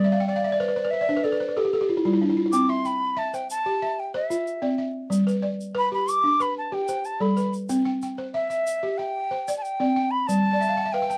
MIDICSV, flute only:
0, 0, Header, 1, 2, 480
1, 0, Start_track
1, 0, Key_signature, 0, "major"
1, 0, Tempo, 645856
1, 1880, Time_signature, 4, 2, 24, 8
1, 8307, End_track
2, 0, Start_track
2, 0, Title_t, "Flute"
2, 0, Program_c, 0, 73
2, 0, Note_on_c, 0, 74, 95
2, 197, Note_off_c, 0, 74, 0
2, 202, Note_on_c, 0, 74, 88
2, 673, Note_on_c, 0, 76, 92
2, 684, Note_off_c, 0, 74, 0
2, 918, Note_on_c, 0, 74, 83
2, 929, Note_off_c, 0, 76, 0
2, 1160, Note_off_c, 0, 74, 0
2, 1873, Note_on_c, 0, 86, 108
2, 2001, Note_on_c, 0, 84, 96
2, 2012, Note_off_c, 0, 86, 0
2, 2124, Note_on_c, 0, 83, 96
2, 2135, Note_off_c, 0, 84, 0
2, 2365, Note_on_c, 0, 81, 99
2, 2376, Note_off_c, 0, 83, 0
2, 2484, Note_on_c, 0, 79, 83
2, 2496, Note_off_c, 0, 81, 0
2, 2600, Note_off_c, 0, 79, 0
2, 2607, Note_on_c, 0, 81, 101
2, 2968, Note_on_c, 0, 79, 84
2, 2979, Note_off_c, 0, 81, 0
2, 3082, Note_off_c, 0, 79, 0
2, 3087, Note_on_c, 0, 76, 78
2, 3531, Note_off_c, 0, 76, 0
2, 4293, Note_on_c, 0, 83, 102
2, 4397, Note_off_c, 0, 83, 0
2, 4411, Note_on_c, 0, 83, 88
2, 4531, Note_on_c, 0, 86, 98
2, 4543, Note_off_c, 0, 83, 0
2, 4767, Note_on_c, 0, 83, 94
2, 4778, Note_off_c, 0, 86, 0
2, 4882, Note_off_c, 0, 83, 0
2, 4888, Note_on_c, 0, 81, 84
2, 5004, Note_on_c, 0, 79, 82
2, 5015, Note_off_c, 0, 81, 0
2, 5242, Note_on_c, 0, 81, 82
2, 5253, Note_off_c, 0, 79, 0
2, 5361, Note_on_c, 0, 83, 70
2, 5372, Note_off_c, 0, 81, 0
2, 5599, Note_off_c, 0, 83, 0
2, 6198, Note_on_c, 0, 76, 89
2, 6671, Note_on_c, 0, 79, 97
2, 6682, Note_off_c, 0, 76, 0
2, 7106, Note_off_c, 0, 79, 0
2, 7113, Note_on_c, 0, 81, 69
2, 7149, Note_on_c, 0, 79, 91
2, 7160, Note_off_c, 0, 81, 0
2, 7512, Note_on_c, 0, 83, 99
2, 7524, Note_off_c, 0, 79, 0
2, 7632, Note_on_c, 0, 81, 110
2, 7643, Note_off_c, 0, 83, 0
2, 8118, Note_on_c, 0, 79, 100
2, 8129, Note_off_c, 0, 81, 0
2, 8307, Note_off_c, 0, 79, 0
2, 8307, End_track
0, 0, End_of_file